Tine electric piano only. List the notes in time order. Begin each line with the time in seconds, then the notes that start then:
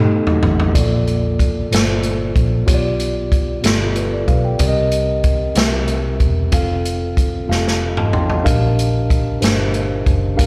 Already playing: A3 D#4 G4 A4 D#5
0.74 A#2 A#3 F4 A4 D5
1.71 A#3 F4 A4 C5
2.66 B2 B3 F4 G4 C#5
2.74 D5
3.62 B3 F4 G4 A4
3.96 F4 B4
4.14 A4 D5
4.28 B4 F5
4.45 D5 G5
4.59 C3 C4 G4 A#4 D5
4.68 D#5
5.55 C3 C4 G4 A#4 E5
6.52 C4 F4 A4 F5
7.48 C4 F4 G4 F5
7.55 A4
7.98 D#5 A5
8.13 G5 C6
8.29 D#5 A5
8.43 A#2 D4 G4 A#4 F5
9.40 D4 G4 A#4 C5
10.36 G2 D4 G4 A#4 F5